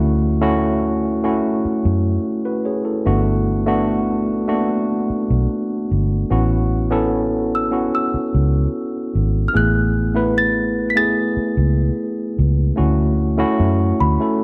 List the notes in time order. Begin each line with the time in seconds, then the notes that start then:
Already playing: D2 A3 C#4 E4 F#4
0.41 A3 C#4 E4 F#4
1.24 A3 C#4 E4 F#4
1.65 muted fingered electric bass stroke
1.85 F#2
2.45 F#4 B4
2.65 G#4 C#5
2.85 E4 A4
3.05 G1 A3 B3 D4 F#4
3.66 A3 B3 D4 F#4
4.48 A3 A#3 D4 F#4
4.54 B3
5.10 muted fingered electric bass stroke
5.30 B1
5.91 G1
6.30 A1 B3 C#4 E4 F#4
6.91 B3 C#4 E4 A4
7.55 E6
7.71 B3 C#4 E4 F#4
7.95 E6
8.14 muted fingered electric bass stroke
8.34 C#2
9.15 G#1
9.48 F6
9.53 A1 A3 B3 E4 G#4 F#6
10.15 A3 B3 E4 B4
10.38 A6
10.90 B6
10.95 A3 B3 E4 G#4 A6
11.37 muted fingered electric bass stroke
11.57 C#2
12.39 C#2
12.76 D2 A3 C#4 E4 F#4
13.38 A3 C#4 E4 F#4
13.60 F#2
14.00 D2 B5
14.20 A3 C#4 E4 A4